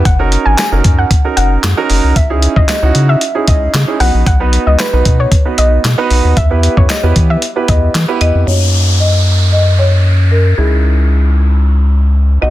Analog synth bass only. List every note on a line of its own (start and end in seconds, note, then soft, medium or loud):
0.05 0.37 F#1 loud
0.46 0.56 G#1 loud
0.72 0.82 F#1 medium
0.85 1.05 F#2 medium
1.37 1.58 F#1 loud
1.63 1.74 F#2 loud
1.90 2.01 F#1 loud
2.04 2.13 C2 medium
2.16 2.48 C#2 loud
2.56 2.66 D#2 medium
2.83 2.92 C#2 loud
2.95 3.16 C#3 loud
3.48 3.68 C#2 medium
3.74 3.85 C#3 loud
4.00 4.11 B1 loud
4.14 4.24 A#1 loud
4.26 4.58 B1 loud
4.67 4.77 C#2 medium
4.93 5.03 B1 loud
5.06 5.26 B2 loud
5.58 5.79 B1 medium
5.84 5.95 B2 loud
6.11 6.22 B1 loud
6.24 6.34 D#2 loud
6.37 6.69 E2 loud
6.77 6.87 F#2 loud
7.03 7.13 E2 loud
7.16 7.37 E3 loud
7.69 7.89 E2 loud
7.95 8.06 E3 loud
8.21 8.32 E2 medium
8.35 8.45 F2 loud
8.47 10.54 F#2 medium
10.58 12.38 C#2 medium
12.42 12.50 B1 medium